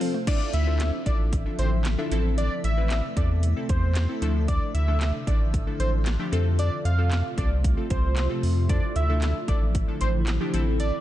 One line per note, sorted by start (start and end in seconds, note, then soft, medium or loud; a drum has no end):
0.00 0.12 F3 medium
0.00 0.15 C4 medium
0.00 0.25 C4 medium
0.00 0.15 F4 medium
0.00 0.16 A4 medium
0.00 0.25 A4 medium
0.00 0.16 C5 medium
0.00 0.25 F5 medium
0.00 open hi-hat medium
0.14 0.25 A3 medium
0.27 2.10 D3 medium
0.27 2.10 F3 medium
0.27 0.55 D4 medium
0.27 0.55 E4 medium
0.27 0.55 F4 medium
0.27 0.55 A4 medium
0.27 0.50 D5 loud
0.27 6.28 E5 medium
0.27 0.55 E5 medium
0.27 kick loud
0.27 closed hi-hat medium
0.27 crash loud
0.53 0.92 D2 loud
0.53 0.91 E5 medium
0.53 closed hi-hat medium
0.67 0.94 D4 medium
0.67 0.94 E4 medium
0.67 0.94 F4 medium
0.67 0.94 A4 medium
0.67 0.94 C5 medium
0.80 snare medium
0.80 clap loud
0.80 closed hi-hat medium
1.06 1.44 A1 medium
1.06 1.34 D4 medium
1.06 1.34 E4 medium
1.06 1.34 F4 medium
1.06 1.34 A4 medium
1.06 1.18 D5 medium
1.06 1.34 D5 medium
1.06 kick loud
1.06 closed hi-hat medium
1.33 kick loud
1.33 closed hi-hat loud
1.46 1.82 D4 medium
1.46 1.82 E4 medium
1.46 1.82 F4 medium
1.46 1.83 A4 medium
1.46 1.83 E5 medium
1.59 1.97 A1 loud
1.59 1.70 C5 medium
1.59 closed hi-hat medium
1.85 snare loud
1.85 clap loud
1.85 closed hi-hat loud
1.98 2.12 D4 medium
1.98 2.11 E4 medium
1.98 2.12 F4 medium
1.98 2.11 A4 medium
1.98 2.12 E5 loud
2.11 2.49 A1 loud
2.11 4.20 C3 medium
2.11 4.20 A3 medium
2.11 2.64 C4 loud
2.11 2.64 E4 medium
2.11 2.65 A4 loud
2.11 closed hi-hat medium
2.38 2.60 D5 loud
2.38 closed hi-hat loud
2.64 3.02 A1 loud
2.64 3.01 E5 medium
2.64 closed hi-hat medium
2.77 3.05 C4 medium
2.77 3.05 E4 medium
2.77 3.05 B4 medium
2.90 snare medium
2.90 clap loud
2.90 closed hi-hat medium
3.17 3.55 E2 loud
3.17 3.44 C4 medium
3.17 3.44 E4 medium
3.17 3.45 A4 medium
3.17 3.28 D5 medium
3.17 kick loud
3.17 closed hi-hat medium
3.43 closed hi-hat loud
3.56 3.93 C4 medium
3.56 3.93 E4 medium
3.56 3.93 A4 medium
3.69 4.07 E2 loud
3.69 4.07 C5 medium
3.69 kick loud
3.69 closed hi-hat medium
3.95 snare loud
3.95 clap loud
3.95 closed hi-hat medium
4.09 4.22 C4 medium
4.09 4.21 E4 medium
4.09 4.21 A4 medium
4.22 4.60 D2 medium
4.22 6.30 D3 medium
4.22 6.30 F3 medium
4.22 4.75 F3 loud
4.22 4.75 A3 medium
4.22 4.75 D4 medium
4.22 4.75 E4 medium
4.22 4.75 A4 loud
4.22 closed hi-hat medium
4.48 4.71 D5 loud
4.48 kick loud
4.48 closed hi-hat loud
4.74 5.12 D2 loud
4.74 5.12 E5 medium
4.74 closed hi-hat medium
4.88 5.15 F3 medium
4.88 5.15 A3 medium
4.88 5.15 D4 medium
4.88 5.15 E4 medium
4.88 5.15 A4 medium
5.01 snare medium
5.01 clap loud
5.01 closed hi-hat medium
5.27 5.65 A1 medium
5.27 5.55 F3 medium
5.27 5.55 A3 medium
5.27 5.55 D4 medium
5.27 5.55 E4 medium
5.27 5.55 A4 medium
5.27 5.39 D5 medium
5.27 kick loud
5.27 closed hi-hat medium
5.54 kick medium
5.54 closed hi-hat loud
5.67 6.03 F3 medium
5.67 6.03 A3 medium
5.67 6.04 D4 medium
5.67 6.04 E4 medium
5.67 6.04 A4 medium
5.79 6.18 A1 loud
5.79 5.91 C5 medium
5.79 closed hi-hat medium
6.06 snare loud
6.06 clap loud
6.06 closed hi-hat medium
6.19 6.33 F3 medium
6.19 6.33 A3 medium
6.19 6.33 D4 medium
6.19 6.33 E4 medium
6.19 6.33 G4 loud
6.32 6.70 F2 medium
6.32 8.67 C3 medium
6.32 8.67 A3 medium
6.32 6.85 C4 loud
6.32 6.85 F4 medium
6.32 8.67 F4 loud
6.32 6.85 A4 loud
6.32 closed hi-hat medium
6.59 6.82 D5 loud
6.59 closed hi-hat medium
6.85 7.23 F2 loud
6.85 7.22 F5 medium
6.85 closed hi-hat medium
6.98 7.26 C4 medium
6.98 7.26 F4 medium
6.98 7.26 A4 medium
7.11 snare medium
7.11 clap loud
7.11 closed hi-hat medium
7.38 7.76 C2 loud
7.38 7.65 C4 medium
7.38 7.65 F4 medium
7.38 7.65 A4 medium
7.38 7.49 D5 medium
7.38 kick loud
7.38 closed hi-hat medium
7.64 kick medium
7.64 closed hi-hat loud
7.77 8.14 C4 medium
7.77 8.14 F4 medium
7.77 8.14 A4 medium
7.90 8.28 C2 loud
7.90 8.28 C5 medium
7.90 kick loud
7.90 closed hi-hat medium
8.17 snare medium
8.17 clap loud
8.17 closed hi-hat loud
8.30 8.57 C4 medium
8.30 8.58 F4 medium
8.30 8.58 A4 medium
8.43 8.81 F2 medium
8.43 open hi-hat medium
8.69 10.52 D3 medium
8.69 8.97 F3 medium
8.69 10.52 F3 medium
8.69 8.97 A3 medium
8.69 8.97 D4 medium
8.69 11.01 E4 loud
8.69 8.97 E4 medium
8.69 8.97 A4 medium
8.69 8.92 D5 loud
8.69 kick loud
8.69 closed hi-hat loud
8.96 9.34 D2 medium
8.96 9.33 E5 medium
8.96 closed hi-hat medium
9.09 9.36 F3 medium
9.09 9.37 A3 medium
9.09 9.37 D4 medium
9.09 9.37 E4 medium
9.09 9.37 A4 medium
9.22 snare medium
9.22 clap loud
9.22 closed hi-hat medium
9.48 9.86 A1 medium
9.48 9.76 F3 medium
9.48 9.76 A3 medium
9.48 9.76 D4 medium
9.48 9.76 E4 medium
9.48 9.76 A4 medium
9.48 9.60 D5 medium
9.48 kick loud
9.48 closed hi-hat medium
9.75 kick medium
9.75 closed hi-hat loud
9.88 10.25 F3 medium
9.88 10.25 A3 medium
9.88 10.25 D4 medium
9.88 10.25 E4 medium
9.88 10.25 A4 medium
10.01 10.39 A1 loud
10.01 10.12 C5 medium
10.01 closed hi-hat medium
10.27 snare loud
10.27 clap loud
10.27 closed hi-hat loud
10.40 10.54 F3 medium
10.40 10.54 A3 medium
10.40 10.54 D4 medium
10.40 10.53 E4 medium
10.40 10.54 G4 loud
10.53 10.92 A1 medium
10.53 11.01 C3 medium
10.53 11.01 A3 medium
10.53 11.01 C4 loud
10.53 11.01 E4 medium
10.53 11.01 A4 loud
10.53 closed hi-hat medium
10.80 11.01 D5 loud
10.80 closed hi-hat loud